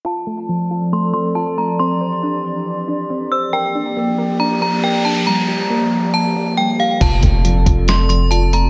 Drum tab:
CC |--------|--------|--------|--------|
HH |--------|--------|--------|--------|
SD |--------|--------|--------|--------|
BD |--------|--------|--------|--------|

CC |x-------|
HH |xxxxxxxx|
SD |----o---|
BD |oo-o----|